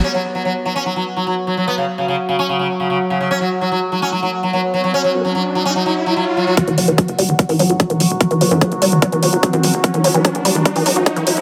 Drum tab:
HH |----------------|----------------|----------------|----------------|
BD |----------------|----------------|----------------|----------------|

HH |xxoxxxoxxooxxxox|xxoxxxoxxxoxxxox|xxoxxxoxxooxxxox|
BD |o---o---o---o---|o---o---o---o---|o---o---o---o---|